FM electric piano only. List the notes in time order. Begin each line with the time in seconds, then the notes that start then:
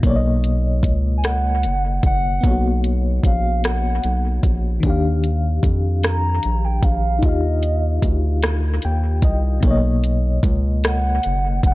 0.00 B2 A#3
0.07 C#5 D5
0.16 D#5
2.41 A#3 B3
2.47 F#4 C#5
4.80 D#3 D4
4.86 G4 F5
7.19 D#4 F4
7.26 G4 F5
8.85 G5
9.24 D#5
9.60 B2 A#3
9.67 C#5 D#5